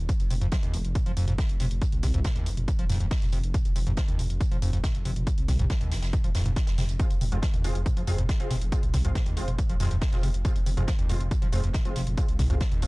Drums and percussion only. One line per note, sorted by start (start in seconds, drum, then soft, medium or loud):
0.09 kick loud
0.09 closed hi-hat medium
0.19 closed hi-hat soft
0.30 closed hi-hat medium
0.30 mid tom medium
0.30 open hi-hat loud
0.41 closed hi-hat soft
0.51 kick loud
0.51 snare loud
0.51 closed hi-hat loud
0.51 closed hi-hat medium
0.63 closed hi-hat soft
0.63 mid tom medium
0.74 closed hi-hat medium
0.74 open hi-hat loud
0.85 closed hi-hat soft
0.95 kick loud
0.95 closed hi-hat medium
0.95 mid tom medium
1.06 closed hi-hat soft
1.17 closed hi-hat medium
1.17 open hi-hat loud
1.28 closed hi-hat soft
1.28 mid tom medium
1.38 kick loud
1.38 snare loud
1.38 closed hi-hat medium
1.49 closed hi-hat medium
1.60 snare soft
1.60 closed hi-hat medium
1.60 mid tom medium
1.60 open hi-hat loud
1.71 closed hi-hat medium
1.82 kick loud
1.82 closed hi-hat medium
1.92 closed hi-hat medium
1.92 mid tom medium
2.03 kick medium
2.03 snare soft
2.03 closed hi-hat medium
2.03 open hi-hat loud
2.14 closed hi-hat soft
2.24 kick loud
2.24 snare loud
2.24 closed hi-hat medium
2.24 mid tom medium
2.36 closed hi-hat soft
2.46 closed hi-hat medium
2.46 open hi-hat loud
2.57 closed hi-hat soft
2.57 mid tom medium
2.68 kick loud
2.68 closed hi-hat medium
2.79 closed hi-hat medium
2.90 snare soft
2.90 closed hi-hat medium
2.90 mid tom medium
2.90 open hi-hat loud
3.00 closed hi-hat medium
3.11 kick loud
3.11 snare loud
3.11 closed hi-hat medium
3.11 open hi-hat medium
3.22 snare soft
3.22 closed hi-hat soft
3.22 mid tom medium
3.32 closed hi-hat medium
3.32 open hi-hat loud
3.44 closed hi-hat medium
3.54 kick loud
3.54 closed hi-hat medium
3.54 mid tom medium
3.65 closed hi-hat medium
3.65 closed hi-hat soft
3.76 closed hi-hat medium
3.76 open hi-hat loud
3.87 closed hi-hat soft
3.87 mid tom medium
3.97 kick loud
3.97 snare loud
3.97 closed hi-hat medium
4.08 closed hi-hat medium
4.19 closed hi-hat medium
4.19 mid tom medium
4.19 open hi-hat loud
4.30 closed hi-hat medium
4.41 kick loud
4.41 closed hi-hat medium
4.52 closed hi-hat medium
4.52 mid tom medium
4.62 closed hi-hat medium
4.62 open hi-hat loud
4.73 closed hi-hat medium
4.83 kick loud
4.83 snare loud
4.83 closed hi-hat loud
4.83 closed hi-hat medium
4.83 mid tom medium
4.95 closed hi-hat medium
5.05 open hi-hat loud
5.16 closed hi-hat medium
5.16 mid tom medium
5.27 kick loud
5.27 closed hi-hat medium
5.38 closed hi-hat medium
5.48 kick medium
5.48 snare soft
5.48 closed hi-hat medium
5.48 mid tom medium
5.48 open hi-hat loud
5.59 closed hi-hat medium
5.70 kick loud
5.70 snare loud
5.70 closed hi-hat medium
5.81 closed hi-hat medium
5.81 mid tom medium
5.92 snare loud
5.92 closed hi-hat medium
5.92 open hi-hat loud
6.02 snare loud
6.02 closed hi-hat medium
6.13 kick loud
6.13 closed hi-hat medium
6.13 mid tom medium
6.24 closed hi-hat medium
6.35 snare loud
6.35 closed hi-hat medium
6.35 open hi-hat loud
6.46 closed hi-hat medium
6.46 mid tom medium
6.56 kick loud
6.56 snare loud
6.56 closed hi-hat medium
6.56 closed hi-hat loud
6.67 snare medium
6.67 closed hi-hat medium
6.78 snare loud
6.78 closed hi-hat medium
6.78 mid tom medium
6.78 open hi-hat loud
6.89 closed hi-hat medium
6.99 kick loud
6.99 closed hi-hat medium
6.99 closed hi-hat loud
7.10 closed hi-hat medium
7.10 closed hi-hat soft
7.21 closed hi-hat medium
7.21 mid tom medium
7.21 open hi-hat loud
7.32 closed hi-hat medium
7.42 kick loud
7.42 snare loud
7.42 closed hi-hat medium
7.42 closed hi-hat loud
7.54 closed hi-hat medium
7.54 mid tom medium
7.64 closed hi-hat medium
7.64 open hi-hat loud
7.75 closed hi-hat medium
7.86 kick loud
7.86 closed hi-hat loud
7.86 closed hi-hat medium
7.86 mid tom medium
7.97 closed hi-hat medium
8.07 closed hi-hat medium
8.07 open hi-hat loud
8.18 closed hi-hat medium
8.18 mid tom medium
8.29 kick loud
8.29 snare loud
8.29 closed hi-hat loud
8.29 closed hi-hat medium
8.40 closed hi-hat medium
8.50 snare soft
8.50 closed hi-hat medium
8.50 mid tom medium
8.50 open hi-hat loud
8.61 closed hi-hat medium
8.72 kick loud
8.72 closed hi-hat loud
8.83 closed hi-hat medium
8.83 mid tom medium
8.94 kick medium
8.94 snare soft
8.94 closed hi-hat medium
8.94 open hi-hat loud
9.05 closed hi-hat medium
9.15 kick loud
9.15 snare loud
9.15 closed hi-hat medium
9.15 closed hi-hat loud
9.15 mid tom medium
9.26 closed hi-hat medium
9.37 closed hi-hat medium
9.37 open hi-hat loud
9.48 closed hi-hat medium
9.48 mid tom medium
9.58 kick loud
9.58 closed hi-hat loud
9.58 closed hi-hat medium
9.70 closed hi-hat medium
9.80 snare soft
9.80 closed hi-hat medium
9.80 mid tom medium
9.80 open hi-hat loud
9.91 closed hi-hat medium
10.01 kick loud
10.01 snare loud
10.01 closed hi-hat medium
10.01 open hi-hat medium
10.13 snare soft
10.13 closed hi-hat medium
10.13 mid tom medium
10.23 closed hi-hat medium
10.23 open hi-hat loud
10.34 closed hi-hat medium
10.45 kick loud
10.45 closed hi-hat medium
10.45 closed hi-hat loud
10.45 mid tom medium
10.55 closed hi-hat soft
10.55 closed hi-hat medium
10.66 closed hi-hat medium
10.66 open hi-hat loud
10.77 closed hi-hat medium
10.77 mid tom medium
10.87 kick loud
10.87 snare loud
10.87 closed hi-hat loud
10.87 closed hi-hat medium
10.99 closed hi-hat medium
11.09 closed hi-hat medium
11.09 mid tom medium
11.09 open hi-hat loud
11.21 closed hi-hat medium
11.31 kick loud
11.31 closed hi-hat medium
11.42 closed hi-hat medium
11.42 mid tom medium
11.52 closed hi-hat medium
11.52 open hi-hat loud
11.64 closed hi-hat medium
11.73 kick loud
11.73 snare loud
11.73 closed hi-hat medium
11.73 closed hi-hat loud
11.73 mid tom medium
11.85 closed hi-hat medium
11.96 snare soft
11.96 closed hi-hat medium
11.96 open hi-hat loud
12.07 closed hi-hat medium
12.07 mid tom medium
12.17 kick loud
12.17 closed hi-hat medium
12.28 closed hi-hat medium
12.39 kick medium
12.39 snare soft
12.39 closed hi-hat medium
12.39 mid tom medium
12.39 open hi-hat loud
12.50 closed hi-hat medium
12.60 kick loud
12.60 snare loud
12.60 closed hi-hat medium
12.72 closed hi-hat medium
12.72 mid tom medium
12.82 closed hi-hat medium
12.82 open hi-hat loud